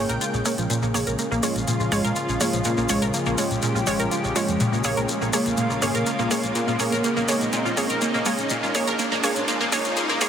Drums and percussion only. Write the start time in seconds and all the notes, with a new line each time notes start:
0.09 closed hi-hat, shekere
0.21 closed hi-hat, shekere
0.34 shekere
0.46 open hi-hat, shekere
0.58 closed hi-hat, shekere
0.70 closed hi-hat, shekere
0.82 shekere
0.94 open hi-hat, shekere
1.07 closed hi-hat, shekere
1.19 closed hi-hat, shekere
1.32 shekere
1.43 open hi-hat, shekere
1.56 closed hi-hat, shekere
1.67 closed hi-hat, shekere
1.80 shekere
1.92 open hi-hat, shekere
2.05 closed hi-hat, shekere
2.16 closed hi-hat, shekere
2.29 shekere
2.41 open hi-hat, shekere
2.53 closed hi-hat, shekere
2.64 closed hi-hat, shekere
2.77 shekere
2.89 open hi-hat, shekere
3.02 closed hi-hat, shekere
3.14 closed hi-hat, shekere
3.26 shekere
3.38 open hi-hat, shekere
3.51 closed hi-hat, shekere
3.62 closed hi-hat, shekere
3.76 shekere
3.87 open hi-hat, shekere
3.99 closed hi-hat, shekere
4.11 closed hi-hat, shekere
4.24 shekere
4.36 open hi-hat, shekere
4.48 closed hi-hat, shekere
4.60 closed hi-hat, shekere
4.73 shekere
4.84 open hi-hat, shekere
4.97 closed hi-hat, shekere
5.08 closed hi-hat, shekere
5.22 shekere
5.33 open hi-hat, shekere
5.46 closed hi-hat, shekere
5.57 closed hi-hat, shekere
5.70 shekere
5.82 open hi-hat, shekere
5.95 closed hi-hat, shekere
6.06 closed hi-hat, shekere
6.19 shekere
6.31 open hi-hat, shekere
6.44 closed hi-hat, shekere
6.55 closed hi-hat, shekere
6.68 shekere
6.80 open hi-hat, shekere
6.92 closed hi-hat, shekere
7.04 closed hi-hat, shekere
7.17 shekere
7.28 open hi-hat, shekere
7.41 closed hi-hat, shekere
7.53 closed hi-hat, shekere
7.66 shekere
7.77 open hi-hat, shekere
7.89 closed hi-hat, shekere
8.01 closed hi-hat, shekere
8.14 shekere
8.26 open hi-hat, shekere
8.39 closed hi-hat, shekere
8.49 closed hi-hat, shekere
8.63 shekere
8.75 open hi-hat, shekere
8.87 closed hi-hat, shekere
8.99 closed hi-hat, shekere
9.13 shekere
9.24 open hi-hat, shekere
9.36 closed hi-hat, shekere
9.48 closed hi-hat, shekere
9.61 shekere
9.72 open hi-hat, shekere
9.85 closed hi-hat, shekere
9.97 closed hi-hat, shekere
10.09 shekere
10.21 open hi-hat, shekere